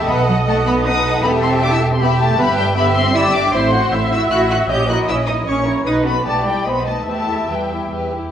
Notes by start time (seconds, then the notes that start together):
0.07 B1 B3 A4 D#5 F#5 B5
0.27 F#3 F#5
0.47 A3 A4 F#5 A5
0.66 B3 B5
0.85 D#4 A4 B4 F#5 D#6
1.22 E1 B3 G4 A4 E5 B5
1.42 C4 C6
1.62 D4 D6
1.70 E4 E6
1.90 C4 C6
2.00 B3 G4 E5 B5
2.19 A3 A5
2.37 G1 B3 G4 B4 E5 B5
2.56 G3 G5
2.75 B3 G4 E5 B5
2.95 C4 C6
3.14 E4 G4 D5 E5 E6
3.33 D4 D6
3.52 A1 C4 E4 C5 E5 C6
3.73 F#4 F#5
3.91 A1 E4 E5
4.11 E4 F#4 F#5 E6
4.30 A1 E4 F#4 E5 F#6
4.49 F#4 F#5 F#6
4.69 A#1 C#4 G4 C#5 D#5 G6
4.88 E4 F#4 A#4 F#6
5.08 A#1 C#4 E4 C#5 E6
5.27 D#4 E4 A#4 D#6
5.46 A#1 C#4 C#5 C#6
5.65 E4 A#4
5.84 B1 D#4 B4 D#6
6.05 B3 F#4 A4 B5
6.24 B1 A3 G4 B4 D5 A5
6.46 G3 E4 G4 G5
6.65 B1 B3 C4 C5 D#5 B5
6.87 A3 D#4 B4 A5
7.06 E2 A3 G4 B4 E5 A5
7.30 E4 G4
7.48 E2 G3 G4 B4 G5
7.71 E4 G4
7.90 E2 G4 B4
8.13 E4 G4